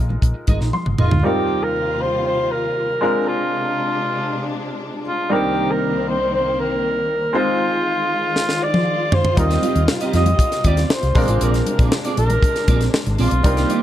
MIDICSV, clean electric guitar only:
0, 0, Header, 1, 3, 480
1, 0, Start_track
1, 0, Tempo, 508475
1, 1174, Time_signature, 4, 2, 24, 8
1, 13052, End_track
2, 0, Start_track
2, 0, Title_t, "Clean electric guitar"
2, 0, Program_c, 0, 27
2, 444, Note_on_c, 0, 63, 66
2, 451, Note_on_c, 0, 68, 76
2, 455, Note_on_c, 0, 70, 72
2, 459, Note_on_c, 0, 75, 75
2, 555, Note_off_c, 0, 75, 0
2, 560, Note_off_c, 0, 70, 0
2, 562, Note_off_c, 0, 68, 0
2, 641, Note_off_c, 0, 63, 0
2, 926, Note_on_c, 0, 63, 66
2, 931, Note_on_c, 0, 68, 67
2, 936, Note_on_c, 0, 70, 72
2, 938, Note_on_c, 0, 75, 72
2, 1038, Note_off_c, 0, 75, 0
2, 1041, Note_off_c, 0, 70, 0
2, 1047, Note_off_c, 0, 68, 0
2, 1122, Note_off_c, 0, 63, 0
2, 8966, Note_on_c, 0, 75, 84
2, 8973, Note_on_c, 0, 67, 82
2, 8976, Note_on_c, 0, 65, 76
2, 8980, Note_on_c, 0, 60, 65
2, 9076, Note_off_c, 0, 60, 0
2, 9082, Note_off_c, 0, 65, 0
2, 9086, Note_off_c, 0, 67, 0
2, 9088, Note_on_c, 0, 60, 66
2, 9089, Note_off_c, 0, 75, 0
2, 9093, Note_on_c, 0, 65, 64
2, 9097, Note_on_c, 0, 67, 65
2, 9101, Note_on_c, 0, 75, 70
2, 9197, Note_off_c, 0, 75, 0
2, 9202, Note_off_c, 0, 67, 0
2, 9207, Note_off_c, 0, 65, 0
2, 9241, Note_off_c, 0, 60, 0
2, 9450, Note_on_c, 0, 75, 88
2, 9455, Note_on_c, 0, 67, 79
2, 9457, Note_on_c, 0, 65, 72
2, 9462, Note_on_c, 0, 60, 66
2, 9559, Note_off_c, 0, 60, 0
2, 9563, Note_off_c, 0, 65, 0
2, 9568, Note_off_c, 0, 67, 0
2, 9570, Note_on_c, 0, 60, 68
2, 9573, Note_off_c, 0, 75, 0
2, 9575, Note_on_c, 0, 65, 59
2, 9579, Note_on_c, 0, 67, 66
2, 9584, Note_on_c, 0, 75, 73
2, 9681, Note_off_c, 0, 75, 0
2, 9687, Note_off_c, 0, 67, 0
2, 9689, Note_off_c, 0, 65, 0
2, 9722, Note_off_c, 0, 60, 0
2, 10049, Note_on_c, 0, 60, 85
2, 10055, Note_on_c, 0, 65, 88
2, 10059, Note_on_c, 0, 67, 93
2, 10062, Note_on_c, 0, 75, 98
2, 10162, Note_off_c, 0, 75, 0
2, 10168, Note_off_c, 0, 67, 0
2, 10171, Note_off_c, 0, 65, 0
2, 10242, Note_off_c, 0, 60, 0
2, 10530, Note_on_c, 0, 60, 85
2, 10536, Note_on_c, 0, 65, 88
2, 10541, Note_on_c, 0, 68, 84
2, 10544, Note_on_c, 0, 74, 92
2, 10642, Note_off_c, 0, 74, 0
2, 10648, Note_off_c, 0, 68, 0
2, 10651, Note_off_c, 0, 65, 0
2, 10653, Note_on_c, 0, 74, 62
2, 10656, Note_off_c, 0, 60, 0
2, 10660, Note_on_c, 0, 68, 56
2, 10663, Note_on_c, 0, 65, 54
2, 10667, Note_on_c, 0, 60, 50
2, 10764, Note_off_c, 0, 60, 0
2, 10768, Note_off_c, 0, 65, 0
2, 10772, Note_off_c, 0, 68, 0
2, 10775, Note_on_c, 0, 60, 82
2, 10776, Note_off_c, 0, 74, 0
2, 10780, Note_on_c, 0, 65, 81
2, 10783, Note_on_c, 0, 68, 76
2, 10787, Note_on_c, 0, 74, 99
2, 10885, Note_off_c, 0, 74, 0
2, 10890, Note_off_c, 0, 68, 0
2, 10893, Note_off_c, 0, 65, 0
2, 10965, Note_off_c, 0, 60, 0
2, 11130, Note_on_c, 0, 74, 65
2, 11136, Note_on_c, 0, 68, 70
2, 11139, Note_on_c, 0, 65, 65
2, 11142, Note_on_c, 0, 60, 56
2, 11243, Note_off_c, 0, 60, 0
2, 11245, Note_off_c, 0, 65, 0
2, 11248, Note_off_c, 0, 68, 0
2, 11251, Note_off_c, 0, 74, 0
2, 11374, Note_on_c, 0, 74, 84
2, 11378, Note_on_c, 0, 68, 73
2, 11382, Note_on_c, 0, 65, 72
2, 11386, Note_on_c, 0, 60, 64
2, 11481, Note_off_c, 0, 60, 0
2, 11485, Note_off_c, 0, 65, 0
2, 11486, Note_off_c, 0, 68, 0
2, 11490, Note_off_c, 0, 74, 0
2, 11969, Note_on_c, 0, 60, 75
2, 11973, Note_on_c, 0, 65, 86
2, 11977, Note_on_c, 0, 68, 88
2, 11980, Note_on_c, 0, 74, 98
2, 12081, Note_off_c, 0, 74, 0
2, 12086, Note_off_c, 0, 68, 0
2, 12090, Note_off_c, 0, 65, 0
2, 12162, Note_off_c, 0, 60, 0
2, 12448, Note_on_c, 0, 60, 84
2, 12452, Note_on_c, 0, 65, 81
2, 12458, Note_on_c, 0, 68, 83
2, 12462, Note_on_c, 0, 74, 90
2, 12560, Note_off_c, 0, 74, 0
2, 12566, Note_off_c, 0, 68, 0
2, 12568, Note_off_c, 0, 65, 0
2, 12641, Note_off_c, 0, 60, 0
2, 12805, Note_on_c, 0, 74, 83
2, 12812, Note_on_c, 0, 67, 79
2, 12814, Note_on_c, 0, 63, 76
2, 12819, Note_on_c, 0, 58, 74
2, 12916, Note_off_c, 0, 58, 0
2, 12922, Note_off_c, 0, 63, 0
2, 12926, Note_off_c, 0, 67, 0
2, 12927, Note_on_c, 0, 58, 73
2, 12929, Note_off_c, 0, 74, 0
2, 12933, Note_on_c, 0, 63, 65
2, 12937, Note_on_c, 0, 67, 73
2, 12940, Note_on_c, 0, 74, 75
2, 13038, Note_off_c, 0, 74, 0
2, 13043, Note_off_c, 0, 67, 0
2, 13047, Note_off_c, 0, 63, 0
2, 13052, Note_off_c, 0, 58, 0
2, 13052, End_track
3, 0, Start_track
3, 0, Title_t, "Muted clean electric guitar strokes"
3, 88, Note_on_c, 9, 29, 42
3, 183, Note_off_c, 9, 29, 0
3, 207, Note_on_c, 9, 29, 38
3, 301, Note_off_c, 9, 29, 0
3, 323, Note_on_c, 9, 29, 45
3, 418, Note_off_c, 9, 29, 0
3, 566, Note_on_c, 9, 29, 39
3, 661, Note_off_c, 9, 29, 0
3, 689, Note_on_c, 9, 29, 30
3, 784, Note_off_c, 9, 29, 0
3, 807, Note_on_c, 9, 29, 42
3, 902, Note_off_c, 9, 29, 0
3, 1050, Note_on_c, 9, 29, 43
3, 1144, Note_off_c, 9, 29, 0
3, 8846, Note_on_c, 9, 29, 40
3, 8941, Note_off_c, 9, 29, 0
3, 9209, Note_on_c, 9, 29, 44
3, 9303, Note_off_c, 9, 29, 0
3, 9331, Note_on_c, 9, 29, 37
3, 9426, Note_off_c, 9, 29, 0
3, 9692, Note_on_c, 9, 29, 44
3, 9786, Note_off_c, 9, 29, 0
3, 9932, Note_on_c, 9, 29, 52
3, 10027, Note_off_c, 9, 29, 0
3, 10174, Note_on_c, 9, 29, 47
3, 10268, Note_off_c, 9, 29, 0
3, 10293, Note_on_c, 9, 29, 40
3, 10387, Note_off_c, 9, 29, 0
3, 10414, Note_on_c, 9, 29, 49
3, 10508, Note_off_c, 9, 29, 0
3, 10896, Note_on_c, 9, 29, 44
3, 10991, Note_off_c, 9, 29, 0
3, 11013, Note_on_c, 9, 29, 43
3, 11107, Note_off_c, 9, 29, 0
3, 11254, Note_on_c, 9, 29, 35
3, 11348, Note_off_c, 9, 29, 0
3, 11492, Note_on_c, 9, 29, 44
3, 11587, Note_off_c, 9, 29, 0
3, 11612, Note_on_c, 9, 29, 52
3, 11706, Note_off_c, 9, 29, 0
3, 11731, Note_on_c, 9, 29, 43
3, 11826, Note_off_c, 9, 29, 0
3, 11852, Note_on_c, 9, 29, 47
3, 11947, Note_off_c, 9, 29, 0
3, 12092, Note_on_c, 9, 29, 45
3, 12186, Note_off_c, 9, 29, 0
3, 12210, Note_on_c, 9, 29, 40
3, 12304, Note_off_c, 9, 29, 0
3, 12330, Note_on_c, 9, 29, 48
3, 12425, Note_off_c, 9, 29, 0
3, 12571, Note_on_c, 9, 29, 60
3, 12666, Note_off_c, 9, 29, 0
3, 12690, Note_on_c, 9, 29, 41
3, 12784, Note_off_c, 9, 29, 0
3, 13052, End_track
0, 0, End_of_file